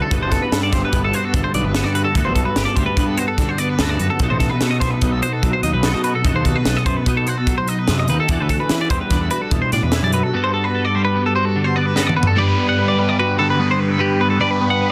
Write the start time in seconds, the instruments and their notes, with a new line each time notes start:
Already playing: clean electric guitar D3 A3 F#4
0.02 clean electric guitar A4
0.11 picked electric bass G1, clean electric guitar G2 B3 F#4 A4, kick, closed hi-hat
0.22 picked electric bass F#1, clean electric guitar C5
0.31 clean electric guitar F#4 A4, kick, snare, closed hi-hat
0.42 clean electric guitar B4
0.52 picked electric bass G2, clean electric guitar A4, snare, closed hi-hat
0.63 clean electric guitar D5
0.72 picked electric bass G1, clean electric guitar G3 C5, kick, snare, closed hi-hat
0.85 clean electric guitar B4
0.93 picked electric bass G1, clean electric guitar B3, kick, closed hi-hat
1.05 clean electric guitar A4
1.13 clean electric guitar F#4 C5, closed hi-hat
1.25 clean electric guitar A4
1.34 picked electric bass G1, clean electric guitar D3, kick, closed hi-hat
1.44 clean electric guitar C5
1.54 picked electric bass B1, clean electric guitar B3 D5, closed hi-hat
1.64 picked electric bass G1, clean electric guitar B4
1.74 clean electric guitar G2 B3 F#4 A4, snare, closed hi-hat
1.84 picked electric bass G2, clean electric guitar D5
1.95 clean electric guitar F#4 B4, closed hi-hat
2.04 clean electric guitar A4
2.15 picked electric bass D2, clean electric guitar G2 B3 F#4 A4, kick, closed hi-hat
2.25 picked electric bass B1, clean electric guitar C5
2.35 clean electric guitar F#4 A4, kick, closed hi-hat
2.45 clean electric guitar B4
2.56 picked electric bass G1, clean electric guitar G4, snare, closed hi-hat
2.65 clean electric guitar A4 D5
2.76 picked electric bass D2, clean electric guitar G3 C5, kick, closed hi-hat
2.86 clean electric guitar B4
2.97 picked electric bass G2, clean electric guitar B3, kick, closed hi-hat
3.07 clean electric guitar A4
3.17 clean electric guitar F#4 C5, closed hi-hat
3.28 clean electric guitar A4
3.38 clean electric guitar D3, kick, snare, closed hi-hat
3.49 clean electric guitar C5
3.58 clean electric guitar B3 D5, closed hi-hat
3.69 clean electric guitar B4
3.79 picked electric bass D2, clean electric guitar G2 B3 F#4 A4, snare, closed hi-hat
3.89 clean electric guitar D5
3.99 picked electric bass F#2, clean electric guitar F#4 B4, closed hi-hat
4.10 clean electric guitar A4
4.19 picked electric bass B1, clean electric guitar B2 D#4 F#4 A4, kick, closed hi-hat
4.30 picked electric bass A1, clean electric guitar C5
4.40 clean electric guitar F#4 A4, kick, snare, closed hi-hat
4.50 clean electric guitar B4
4.61 picked electric bass B2, clean electric guitar A4, snare, closed hi-hat
4.71 clean electric guitar D#5
4.80 picked electric bass B1, clean electric guitar B3 C5, kick, snare, closed hi-hat
4.91 clean electric guitar B4
5.01 picked electric bass B1, clean electric guitar D#4, kick, closed hi-hat
5.11 clean electric guitar A4
5.22 clean electric guitar F#4 C5, closed hi-hat
5.33 clean electric guitar A4
5.43 picked electric bass B1, clean electric guitar F#3, kick, closed hi-hat
5.53 clean electric guitar C5
5.63 picked electric bass D#2, clean electric guitar D#4 D#5, closed hi-hat
5.73 picked electric bass B1, clean electric guitar B4
5.83 clean electric guitar B2 D#4 F#4 A4, snare, closed hi-hat
5.94 picked electric bass B2, clean electric guitar D#5
6.04 clean electric guitar F#4 B4, closed hi-hat
6.15 clean electric guitar A4
6.24 picked electric bass F#2, clean electric guitar B2 D#4 F#4 A4, kick, closed hi-hat
6.35 picked electric bass D#2, clean electric guitar C5
6.45 clean electric guitar F#4 A4, kick, closed hi-hat
6.56 clean electric guitar B4
6.65 picked electric bass B1, clean electric guitar A4, snare, closed hi-hat
6.77 clean electric guitar D#5
6.86 picked electric bass F#2, clean electric guitar B3 C5, kick, closed hi-hat
6.97 clean electric guitar B4
7.06 picked electric bass B2, clean electric guitar D#4, kick, closed hi-hat
7.17 clean electric guitar A4
7.27 clean electric guitar F#4 C5, closed hi-hat
7.38 clean electric guitar A4
7.47 clean electric guitar F#3, kick, closed hi-hat
7.58 clean electric guitar C5
7.68 clean electric guitar D#4 D#5, closed hi-hat
7.79 clean electric guitar B4
7.88 picked electric bass F#2, clean electric guitar C3, snare, closed hi-hat
7.99 clean electric guitar D#5
8.08 picked electric bass D#2, clean electric guitar D#3 B4, closed hi-hat
8.20 clean electric guitar A4
8.28 picked electric bass E2, clean electric guitar E3 D4 F#4, kick, closed hi-hat
8.33 clean electric guitar A4
8.40 picked electric bass D2, clean electric guitar B4
8.49 clean electric guitar F#4 A4, kick, closed hi-hat
8.60 clean electric guitar B4
8.69 picked electric bass E3, clean electric guitar B4, snare, closed hi-hat
8.81 clean electric guitar D5
8.90 picked electric bass E2, clean electric guitar G3 C5, kick, closed hi-hat
9.01 clean electric guitar B4
9.10 picked electric bass E2, clean electric guitar D4, kick, snare, closed hi-hat
9.21 clean electric guitar A4
9.31 clean electric guitar F#4 B4, closed hi-hat
9.42 clean electric guitar A4
9.51 picked electric bass E2, clean electric guitar B2, kick, closed hi-hat
9.62 clean electric guitar C5
9.72 picked electric bass A2, clean electric guitar D4 D5, snare, closed hi-hat
9.83 picked electric bass E2, clean electric guitar B4
9.92 clean electric guitar E3, snare, closed hi-hat
10.03 picked electric bass F#2, clean electric guitar D5
10.12 clean electric guitar F#3 B4, closed hi-hat
10.23 clean electric guitar A4
10.33 clean electric guitar G2 B3 F#4 A4
10.44 clean electric guitar C5
10.54 clean electric guitar F#4 A4
10.64 clean electric guitar B4
10.75 clean electric guitar A4
10.85 clean electric guitar D5
10.95 clean electric guitar G3 C5
11.05 clean electric guitar B4
11.15 clean electric guitar B3
11.26 clean electric guitar A4
11.35 clean electric guitar F#4 C5
11.45 clean electric guitar A4
11.56 clean electric guitar D3
11.64 clean electric guitar C5
11.76 clean electric guitar B3 D5
11.86 clean electric guitar B4
11.95 clean electric guitar G2 B3 F#4 A4, snare
12.07 clean electric guitar D5, mid tom
12.16 clean electric guitar F#4 B4
12.23 floor tom
12.27 clean electric guitar A4
12.36 clean electric guitar G2 G3 B3 B4 D5, overdriven electric guitar G3 B3 D4 G4 B4
12.48 clean electric guitar B4
12.58 clean electric guitar B3
12.69 clean electric guitar F#5
12.79 clean electric guitar B4
12.88 clean electric guitar D5
12.99 clean electric guitar G3 B4
13.09 clean electric guitar D5
13.19 clean electric guitar F#4 B4
13.38 clean electric guitar D3 A4, overdriven electric guitar G3 B3 D4 G4 B4
13.50 clean electric guitar B4
13.58 overdriven electric guitar G3 B3 D4 G4 B4, clean electric guitar B3
13.71 clean electric guitar C5
13.80 clean electric guitar B4
13.90 clean electric guitar A4
13.98 clean electric guitar G2 G4 B4
14.20 clean electric guitar B3 B4
14.30 clean electric guitar A4
14.39 clean electric guitar G2 B4 D5, overdriven electric guitar G3 B3 D4 G4 B4
14.51 clean electric guitar B4
14.61 clean electric guitar B3
14.70 clean electric guitar F#5
14.81 clean electric guitar B4